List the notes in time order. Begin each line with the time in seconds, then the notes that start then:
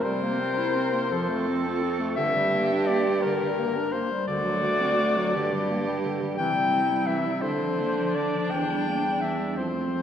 0.03 C3 G3 A#4 C5
0.22 A#3
0.40 C4
0.58 E4
0.76 C4
0.93 A#3
1.10 F2 F3 A4
1.29 A3
1.49 C4
1.67 F4
1.83 C4
2.00 A3
2.16 G2 D3 G4 E5
2.36 G3
2.54 A#3
2.72 D4
2.86 A#3 D5
3.08 G3
3.22 D3 A#4
3.43 G3
3.59 A#3
3.76 D4
3.92 A#3 C5
4.11 G3
4.27 D2 D3 F#4 D5
4.45 F#3
4.63 A3
4.80 C4
4.98 A3
5.17 F#3
5.34 G2 D3 G4
5.53 G3
5.70 A#3
5.86 G3
6.05 D3
6.22 G3
6.38 C3 E3 E4 G5
6.55 G3
6.73 C4
6.91 G3
7.06 E3 E5
7.27 G3
7.42 D3 D4 C5
7.62 F3
7.80 A#3
7.98 F3
8.15 D3 D5
8.35 F3
8.51 E2 E3 G5
8.71 G3
8.89 A#3
9.04 G3
9.21 E3 E5
9.40 G3
9.56 F2 F3 C4 C5
9.73 A3
9.91 F3